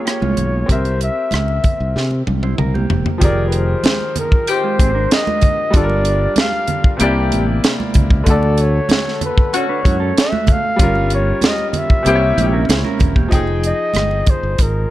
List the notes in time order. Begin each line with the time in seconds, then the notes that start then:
Already playing: A#3 F4 G#4 C#5
0.05 A#3 G4, cross-stick, closed hi-hat
0.21 C2 G#3 F4, muted conga, high conga
0.37 B1, closed hi-hat, low conga
0.66 C2 C4 G4, kick, closed hi-hat, muted conga, low conga
0.70 A#4 C5 E5
0.85 closed hi-hat, muted conga
1.01 E5, closed hi-hat
1.31 C#2, cross-stick, closed hi-hat, muted conga, high conga
1.35 E5
1.48 muted conga
1.64 kick, closed hi-hat, low conga
1.80 C2
1.96 C3, snare
2.11 muted conga
2.27 C2, high tom, high conga
2.43 E4 C5, high tom
2.58 C2 A#4, mid tom, muted conga
2.74 A#3 G4, muted conga, high conga
2.90 E1, floor tom, low conga
3.06 floor tom
3.18 F1 D#3 F3 G4, kick, closed hi-hat, muted conga, low conga
3.23 G#4 A#4 D5
3.48 B4, closed hi-hat
3.56 C5
3.84 snare, closed hi-hat, high conga
4.01 muted conga
4.16 A#4, closed hi-hat, low conga
4.32 kick
4.47 D#3 C4 G4 C5, closed hi-hat
4.64 G#3 F4
4.79 G#1 C4 G#4, kick, closed hi-hat, high conga
4.95 D4 A#4
5.11 D#5, snare, closed hi-hat, muted conga
5.27 muted conga, high conga
5.41 kick, closed hi-hat, low conga
5.70 G1 G3 D4, kick, closed hi-hat, low conga
5.74 F4 A4 D5
5.83 A#4
5.89 muted conga
6.05 closed hi-hat
6.36 snare, closed hi-hat, high conga
6.41 F5
6.53 muted conga
6.68 closed hi-hat, low conga
6.84 kick
6.97 C2 C3 E3 A#3 D4 G4, closed hi-hat, muted conga
7.01 E4 D5
7.32 A1, closed hi-hat, high conga
7.64 snare, closed hi-hat, muted conga
7.80 high conga
7.94 C#2, kick, closed hi-hat, low conga
8.10 kick
8.24 D2 D3 A3, kick, closed hi-hat, muted conga, low conga
8.28 F#4 A4 D5
8.43 muted conga
8.58 C#5, closed hi-hat
8.89 snare, closed hi-hat, muted conga, high conga
9.08 snare
9.21 closed hi-hat, low conga
9.25 B4
9.38 kick
9.53 D3 C#4 F#4 A4 C#5, closed hi-hat, muted conga
9.69 D4 B4
9.84 F#2 E4 C#5, kick, closed hi-hat, high conga
10.00 C#4 A4
10.18 E5, snare, closed hi-hat
10.32 A3 F#4, muted conga, high conga
10.47 kick, closed hi-hat, low conga
10.52 F5
10.76 G1 G3 C#4, kick, closed hi-hat, low conga
10.81 F4 A#4
10.95 muted conga
11.10 closed hi-hat
11.15 C#5
11.41 snare, closed hi-hat, high conga
11.46 D#5
11.58 muted conga
11.70 D#5, closed hi-hat, low conga
11.78 E5
11.90 kick
12.03 C2 C3 E3 A#3 C#4 E4 G4, closed hi-hat, muted conga
12.09 C5
12.15 C#5
12.37 A#1 A#3 G4, closed hi-hat, high conga
12.53 C#4 A#4
12.69 C#2 E4 C5, snare, closed hi-hat, muted conga
12.85 C#4 A#4, high conga
12.99 E1, kick, closed hi-hat, low conga
13.16 A#3 G4, kick
13.28 F3 D#4, kick, closed hi-hat, muted conga, low conga
13.32 F1 G#4 G5
13.47 muted conga
13.64 D#5, closed hi-hat
13.94 G1, cross-stick, closed hi-hat, muted conga, high conga
14.11 muted conga
14.26 C5, kick, closed hi-hat, low conga
14.43 G1
14.58 G#1 A#4, kick, closed hi-hat